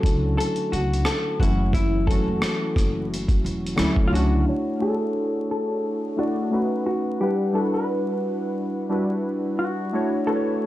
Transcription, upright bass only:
0.04 0.34 C#2 medium
0.73 1.02 C#2 medium
1.40 2.17 F#1 medium
2.28 2.41 F#1 medium
2.76 3.37 F#1 medium
3.45 3.75 E1 medium
3.79 4.09 D2 medium
4.13 4.43 C#2 medium

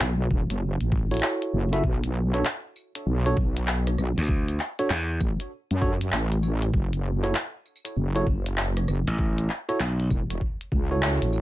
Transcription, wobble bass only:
0.00 0.29 B1 medium
0.31 0.47 E1 medium
0.50 0.78 F#1 loud
0.81 1.21 A1 medium
1.53 1.82 F#1 loud
1.84 2.43 B1 medium
3.06 3.35 B1 medium
3.37 3.96 B1 loud
3.98 4.15 B1 loud
5.21 5.37 A1 medium
5.71 6.11 F#2 medium
6.13 6.72 A1 loud
6.74 7.33 F#1 medium
7.96 8.25 F#1 medium
8.27 8.86 F#1 loud
8.88 9.05 F#1 loud
10.11 10.27 E1 medium
10.30 10.39 E1 loud
10.72 11.19 C#2 loud
11.22 11.41 A1 medium

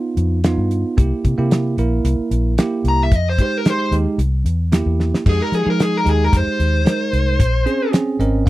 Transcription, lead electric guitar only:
2.88 3.00 A#5 medium
3.03 3.15 E5 medium
3.15 3.27 D#5 medium
3.29 3.40 C5 medium
3.42 3.58 C5 medium
3.58 3.70 A#4 medium
3.70 3.93 C5 medium
5.29 5.42 G#4 medium
5.42 5.55 A#4 medium
5.55 5.67 G#4 medium
5.70 5.80 A#4 medium
5.83 5.97 G#4 medium
5.97 6.08 A#4 medium
6.10 6.24 G#4 medium
6.24 6.34 A#4 medium
6.37 7.91 C5 medium

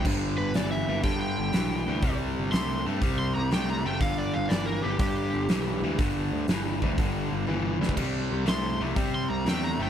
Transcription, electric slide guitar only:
0.38 0.54 B4 loud
0.56 0.71 D5 medium
0.71 1.03 E5 medium
1.04 1.19 G5 loud
1.21 2.17 G5 loud
2.52 2.84 C6 loud
3.19 3.35 C6 medium
3.35 3.51 A#5 loud
3.53 3.68 G5 medium
3.70 3.85 A#5 medium
3.86 4.01 G5 medium
4.02 4.17 F5 medium
4.18 4.34 D5 loud
4.34 4.50 F5 loud
4.49 4.66 D5 medium
4.66 4.82 A#4 medium
4.82 4.99 G4 medium
5.00 5.96 G4 medium
8.49 8.80 C6 loud
9.15 9.30 C6 medium
9.30 9.46 A#5 medium
9.49 9.64 G5 medium
9.64 9.80 A#5 loud
9.83 9.90 G5 loud

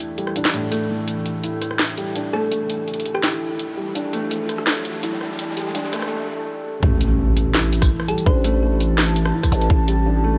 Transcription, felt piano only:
0.00 0.18 G3 medium
0.00 0.72 A3 loud
0.00 0.36 D4 medium
0.00 0.16 E4 medium
0.18 0.35 G3 medium
0.36 0.52 D4 medium
0.54 0.71 A2 medium
0.72 0.88 A3 loud
0.90 1.07 E3 medium
1.44 1.96 E4 medium
1.98 2.15 G3 medium
2.15 2.32 D4 medium
2.34 2.50 A3 loud
2.51 3.22 A3 medium
3.23 3.75 E4 medium
3.77 3.94 G3 medium
3.95 4.11 D4 medium
4.13 4.29 A3 loud
4.31 5.01 A3 medium
5.03 5.55 E4 medium
5.57 5.74 G3 medium
5.75 5.91 D4 medium
5.93 6.09 A3 loud
6.11 6.81 A3 medium
6.83 7.53 A3 medium
7.55 8.07 E4 medium
8.08 8.25 G3 medium
8.26 8.43 D4 medium
8.44 8.61 A3 loud
8.62 9.32 A3 medium
9.34 9.86 E4 medium
9.88 10.05 G3 medium
10.06 10.22 D4 medium
10.24 10.38 A3 medium

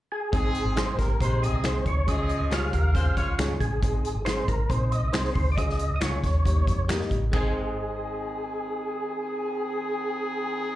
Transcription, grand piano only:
0.33 0.58 G#3 medium
0.33 0.58 C4 medium
0.33 0.58 D#4 medium
0.33 0.59 G#4 medium
0.77 1.02 G#3 medium
0.77 1.02 C4 medium
0.77 1.02 D#4 medium
0.77 1.03 G#4 medium
1.20 1.45 G#3 medium
1.20 1.46 C4 medium
1.20 1.46 D#4 medium
1.20 1.46 G4 medium
1.63 1.89 G#3 medium
1.63 1.89 C4 medium
1.63 1.89 D#4 medium
1.63 1.90 G#4 medium
2.06 2.32 G#3 medium
2.06 2.33 C#4 medium
2.06 2.33 F4 medium
2.06 2.33 G#4 medium
2.50 2.76 G#3 medium
2.50 2.76 C#4 medium
2.50 2.76 F4 medium
2.50 2.76 G4 medium
2.93 3.19 G#3 medium
2.93 3.20 C#4 medium
2.93 3.20 F4 medium
2.93 3.20 G#4 medium
3.38 3.64 G#3 medium
3.38 3.64 C#4 medium
3.38 3.64 F4 medium
3.38 3.65 G#4 medium
3.82 4.08 G#3 medium
3.82 4.08 C4 medium
3.82 4.08 D#4 medium
3.82 4.08 G#4 medium
4.25 4.51 G#3 medium
4.25 4.52 C4 medium
4.25 4.52 D#4 medium
4.25 4.52 G#4 medium
4.69 4.95 G#3 medium
4.69 4.95 C4 medium
4.69 4.96 D#4 medium
4.69 4.96 G#4 medium
5.13 5.39 G#3 medium
5.13 5.39 C4 medium
5.13 5.39 D#4 medium
5.13 5.40 G#4 medium
5.57 5.83 G#3 medium
5.57 5.83 C#4 medium
5.57 5.83 F4 medium
5.57 5.84 G#4 medium
6.01 6.26 G#3 medium
6.01 6.26 C#4 medium
6.01 6.27 F4 medium
6.01 6.27 G#4 medium
6.45 6.70 G3 medium
6.45 6.71 A#3 medium
6.45 6.71 D#4 medium
6.45 6.71 G4 medium
6.89 7.14 G3 medium
6.89 7.14 A#3 medium
6.89 7.14 D#4 medium
6.89 7.14 G4 medium
7.31 10.75 G#3 medium
7.31 10.75 C4 medium
7.31 10.75 D#4 medium
7.36 10.75 G#4 medium

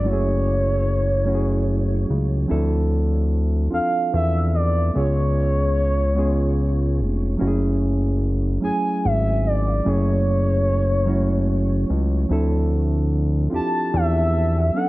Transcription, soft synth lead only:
0.06 2.09 C#5 medium
3.73 4.11 F5 loud
4.15 4.52 E5 medium
4.55 4.92 D5 medium
4.96 6.95 C#5 medium
8.63 9.07 G#5 loud
9.05 9.48 E5 medium
9.47 9.89 D5 medium
9.88 11.90 C#5 medium
13.55 13.97 A5 loud
13.95 14.75 E5 medium
14.76 14.89 F#5 medium

